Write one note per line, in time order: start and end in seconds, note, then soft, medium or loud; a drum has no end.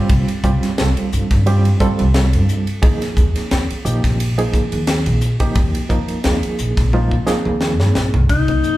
0.00 0.37 G3 medium
0.00 0.37 C4 medium
0.00 0.37 F4 medium
0.00 0.37 G4 medium
0.09 0.25 C2 medium
0.09 kick loud
0.09 ride medium
0.28 muted upright bass stroke soft
0.28 ride medium
0.44 0.59 C2 medium
0.44 0.74 G3 medium
0.44 0.74 C4 medium
0.44 0.74 F4 medium
0.44 0.74 G4 medium
0.44 kick medium
0.44 hi-hat pedal medium
0.63 snare soft
0.63 ride medium
0.78 0.93 C2 medium
0.78 1.38 G3 medium
0.78 1.38 C4 medium
0.78 1.38 F4 medium
0.78 1.38 A4 medium
0.78 snare loud
0.78 ride medium
0.97 muted upright bass stroke soft
0.97 ride medium
1.13 1.28 G2 medium
1.13 hi-hat pedal medium
1.31 1.70 G2 medium
1.31 kick medium
1.31 snare soft
1.31 ride medium
1.46 1.76 G3 medium
1.46 1.77 C4 medium
1.46 1.77 F4 medium
1.46 1.77 G4 loud
1.46 ride medium
1.65 ride medium
1.80 2.70 G3 medium
1.80 2.70 C4 medium
1.80 2.70 F4 medium
1.80 2.70 A4 loud
1.80 kick medium
1.80 hi-hat pedal medium
1.99 2.36 C2 medium
1.99 ride medium
2.14 snare loud
2.14 ride medium
2.33 2.61 G2 medium
2.33 ride medium
2.49 hi-hat pedal medium
2.67 ride medium
2.82 2.98 D#2 medium
2.82 3.72 F3 medium
2.82 3.72 A#3 medium
2.82 3.72 D#4 medium
2.82 3.72 G#4 medium
2.82 kick loud
2.82 ride medium
3.02 muted upright bass stroke soft
3.02 snare soft
3.02 ride medium
3.17 3.32 D#2 medium
3.17 kick medium
3.17 hi-hat pedal medium
3.36 muted upright bass stroke soft
3.36 snare soft
3.36 ride medium
3.51 3.66 D#2 medium
3.51 snare medium
3.51 ride medium
3.70 muted upright bass stroke soft
3.70 ride medium
3.85 4.00 A#1 medium
3.85 4.30 F3 medium
3.85 4.30 A#3 medium
3.85 4.30 D#4 medium
3.85 4.30 G4 medium
3.85 hi-hat pedal medium
4.04 4.43 A#1 medium
4.04 kick medium
4.04 snare soft
4.04 ride medium
4.20 ride medium
4.38 5.25 F3 medium
4.38 5.25 A#3 medium
4.38 5.25 D#4 medium
4.38 5.25 G#4 medium
4.38 ride medium
4.54 muted upright bass stroke soft
4.54 kick medium
4.54 hi-hat pedal medium
4.72 5.08 D#2 medium
4.72 ride medium
4.87 snare loud
4.87 ride medium
5.06 5.34 A#1 medium
5.06 ride medium
5.21 hi-hat pedal medium
5.40 5.84 F3 medium
5.40 5.84 A#3 medium
5.40 5.84 D#4 medium
5.40 5.84 G4 medium
5.40 kick medium
5.40 ride medium
5.55 5.71 D#2 medium
5.55 kick loud
5.55 ride medium
5.75 muted upright bass stroke soft
5.75 ride medium
5.89 6.05 D#2 medium
5.89 6.20 F3 medium
5.89 6.20 A#3 medium
5.89 6.20 D#4 medium
5.89 6.20 A#4 medium
5.89 kick medium
5.89 hi-hat pedal medium
6.08 muted upright bass stroke soft
6.08 ride medium
6.24 6.40 D#2 medium
6.24 6.84 F3 medium
6.24 6.84 A#3 medium
6.24 6.84 D#4 medium
6.24 6.84 G#4 medium
6.24 snare medium
6.24 ride medium
6.43 muted upright bass stroke soft
6.43 ride medium
6.59 6.74 A#1 medium
6.59 hi-hat pedal medium
6.77 7.17 A#1 medium
6.77 kick medium
6.77 snare soft
6.77 ride medium
6.93 7.23 F3 medium
6.93 7.23 A#3 medium
6.93 7.23 D#4 medium
6.93 7.23 F4 medium
6.93 high tom medium
7.11 kick medium
7.27 8.16 F3 medium
7.27 8.16 A#3 medium
7.27 8.16 D#4 medium
7.27 8.16 G#4 medium
7.27 muted upright bass stroke soft
7.27 snare medium
7.27 hi-hat pedal medium
7.45 7.80 D#2 medium
7.45 mid tom medium
7.61 snare medium
7.80 7.92 G2 medium
7.80 snare medium
7.95 8.12 A#1 medium
7.95 snare medium
7.95 hi-hat pedal medium
8.14 8.28 C2 medium
8.14 floor tom medium
8.29 8.56 C2 medium
8.29 8.77 D#4 medium
8.29 kick medium
8.29 ride medium
8.48 8.77 C3 medium
8.48 8.77 F3 medium
8.48 8.77 A#3 medium
8.48 8.77 D#4 medium
8.48 kick medium
8.48 ride soft
8.64 hi-hat pedal medium